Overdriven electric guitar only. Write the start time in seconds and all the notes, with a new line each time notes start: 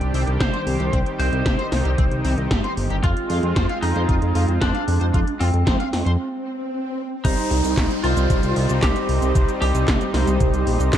0.14 C4
0.40 G4
0.54 C5
0.80 G4
0.93 C4
1.19 C4
1.46 G4
1.59 C5
1.85 G4
1.98 C4
2.25 C4
2.51 G4
2.64 C5
2.91 G4
3.04 F4
3.30 F4
3.56 C5
3.70 F5
3.96 C5
4.09 F4
4.35 F4
4.62 C5
4.75 F5
5.01 C5
5.14 F4
5.40 F4
5.67 C5
5.80 F5
6.06 C5